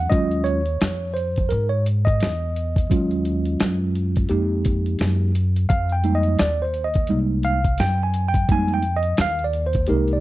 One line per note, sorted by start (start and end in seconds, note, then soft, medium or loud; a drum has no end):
0.00 0.10 F#5 medium
0.10 0.78 D#2 loud
0.10 0.60 F#3 medium
0.10 0.60 G#3 medium
0.10 0.60 C#4 medium
0.10 0.60 F4 medium
0.10 0.47 D#5 loud
0.10 kick loud
0.10 closed hi-hat loud
0.31 closed hi-hat soft
0.44 1.17 C#5 loud
0.44 closed hi-hat medium
0.66 closed hi-hat medium
0.81 1.48 F2 medium
0.81 snare loud
0.81 closed hi-hat medium
1.14 1.51 C5 medium
1.14 closed hi-hat medium
1.36 kick medium
1.36 closed hi-hat medium
1.49 2.18 G#2 loud
1.49 1.69 A#4 medium
1.49 closed hi-hat medium
1.69 1.86 C#5 medium
1.86 closed hi-hat medium
2.05 3.76 D#5 medium
2.05 kick medium
2.05 closed hi-hat soft
2.20 2.87 E2 loud
2.20 snare loud
2.20 closed hi-hat medium
2.56 closed hi-hat medium
2.76 kick medium
2.76 closed hi-hat medium
2.90 3.57 D#2 medium
2.90 4.26 F#3 medium
2.90 4.26 G#3 medium
2.90 4.26 C#4 medium
2.90 4.27 F4 medium
2.90 kick loud
2.90 closed hi-hat loud
3.11 closed hi-hat soft
3.25 closed hi-hat medium
3.45 closed hi-hat medium
3.60 4.27 F#2 medium
3.60 snare loud
3.60 closed hi-hat medium
3.95 closed hi-hat medium
4.16 kick medium
4.16 closed hi-hat medium
4.29 4.97 F2 loud
4.29 5.31 G#3 soft
4.29 5.31 A#3 soft
4.29 5.31 D#4 medium
4.29 5.31 G4 medium
4.29 closed hi-hat medium
4.65 kick medium
4.65 closed hi-hat medium
4.86 closed hi-hat soft
4.99 5.67 F#2 loud
4.99 snare loud
4.99 closed hi-hat medium
5.35 closed hi-hat medium
5.56 closed hi-hat medium
5.69 6.36 F2 loud
5.69 5.93 F5 loud
5.69 kick loud
5.69 closed hi-hat medium
5.89 6.17 G5 medium
5.89 closed hi-hat soft
6.04 6.36 G3 soft
6.04 6.36 G#3 soft
6.04 6.36 A#3 soft
6.04 6.36 D#4 medium
6.04 closed hi-hat medium
6.15 6.40 D#5 medium
6.23 closed hi-hat medium
6.39 7.07 D#2 medium
6.39 6.63 D5 loud
6.39 snare loud
6.39 closed hi-hat medium
6.62 6.86 C5 medium
6.74 closed hi-hat medium
6.84 7.18 D#5 medium
6.94 kick medium
6.94 closed hi-hat medium
7.07 7.76 C2 medium
7.07 7.58 G3 medium
7.07 7.58 G#3 soft
7.07 7.58 A#3 soft
7.07 7.58 D#4 medium
7.07 closed hi-hat medium
7.43 7.80 F5 loud
7.43 closed hi-hat medium
7.64 kick medium
7.64 closed hi-hat soft
7.78 8.46 F#2 loud
7.78 8.01 G5 loud
7.78 snare loud
7.78 closed hi-hat medium
8.03 8.27 G#5 medium
8.14 closed hi-hat medium
8.28 8.51 G5 loud
8.34 kick medium
8.34 closed hi-hat medium
8.49 9.15 F2 loud
8.49 8.81 G3 medium
8.49 8.81 G#3 medium
8.49 8.82 A#3 medium
8.49 8.82 D#4 medium
8.49 8.72 G#5 loud
8.49 kick loud
8.49 closed hi-hat medium
8.68 closed hi-hat soft
8.74 8.97 G5 loud
8.82 closed hi-hat medium
8.96 9.18 D#5 medium
9.03 closed hi-hat medium
9.17 9.85 D#2 loud
9.17 9.44 F5 loud
9.17 snare loud
9.17 closed hi-hat medium
9.39 closed hi-hat soft
9.44 9.65 D5 medium
9.53 closed hi-hat medium
9.67 9.88 C5 medium
9.73 kick medium
9.73 closed hi-hat medium
9.87 10.20 C2 medium
9.87 10.20 G#3 soft
9.87 10.20 A#3 soft
9.87 10.20 D#4 medium
9.87 10.20 G4 medium
9.87 10.11 A#4 medium
9.87 closed hi-hat medium
10.08 closed hi-hat soft
10.13 10.20 D5 medium